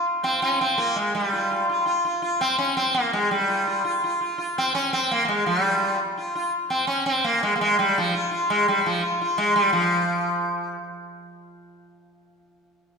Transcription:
0.23 C4 F4
0.42 C#4 F4
0.61 C4 F4
0.78 A#3 F4
0.96 G#3
1.15 G3
1.33 F4
1.51 F4
1.69 F4
1.86 F4
2.05 F4
2.22 F4
2.41 C4
2.58 C#4
2.77 C4
2.94 A#3
3.13 G#3
3.31 G3
3.48 F4
3.67 F4
3.85 F4
4.04 F4
4.21 F4
4.38 F4
4.58 C4
4.75 C#4
4.93 C4
5.11 A#3
5.25 G#3 A#3
5.46 G3
5.64 F4
5.83 F4
6.17 F4
6.35 F4
6.70 C4
6.87 C#4
7.06 C4
7.24 A#3
7.43 G#3
7.56 A#3
7.61 G#3
7.79 G3
7.98 F3
8.14 F4
8.31 F4
8.50 G#3
8.68 G3
8.81 G3
8.86 F3
9.03 F4
9.21 F4
9.38 G#3
9.56 G3
9.73 F3

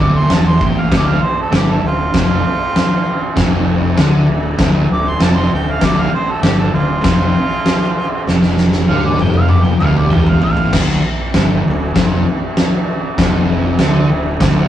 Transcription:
0.00 D1 D2 D6, kick
0.17 C6
0.30 E1 E2 A5, snare, crash
0.48 C6
0.61 A1 A2, kick
0.67 G5
0.80 F5
0.92 D1 D2, kick, snare, crash
0.96 D5
1.07 F5
1.22 C5, muted distorted electric guitar stroke, muted fingered electric bass stroke
1.42 A4
1.52 G1 G2 G4, snare, crash
1.72 A4
1.83 D1 D2
1.87 F4
2.14 F1 F2, kick, snare, crash
2.19 F4
2.76 snare, crash
3.35 F1 F2, kick, snare, crash
3.97 D2 D3, snare, crash
4.27 D1 D2
4.58 D1 D2, kick, snare, crash
4.89 D1 D2 D6
5.09 C6
5.20 F1 F2 A5, snare, crash
5.36 C6
5.51 D1 D2 G5
5.71 F5
5.81 D1 D2, kick, snare, crash
5.86 D5
6.00 F5
6.12 C5, muted distorted electric guitar stroke, muted fingered electric bass stroke
6.31 A4
6.43 G1 G2 G4, snare, crash
6.60 A4
6.74 D1 D2 F4
7.04 F1 F2 F4, kick, snare, crash
7.65 snare, crash
8.27 F1 F2, snare
8.42 snare
8.57 snare
8.72 snare
8.88 D2 D3 F5, high tom
9.03 D5, high tom
9.18 F1 F2 G5, high tom
9.34 F5, mid tom
9.48 D5, mid tom
9.63 G5, mid tom
9.80 D1 D2 F5, mid tom
9.96 D5, mid tom
10.11 E1 E2 G5, mid tom
10.27 F5, floor tom
10.42 A1 A2 F5, floor tom
10.57 floor tom
10.73 D1 D2, kick, snare, crash
11.04 muted distorted electric guitar stroke, muted fingered electric bass stroke
11.34 G1 G2, snare, crash
11.64 D1 D2
11.94 F1 F2, kick, snare, crash
12.57 snare, crash
13.18 F1 F2, kick, snare, crash
13.79 D2 D3, snare, crash
14.09 D1 D2
14.40 D1 D2, kick, snare, crash

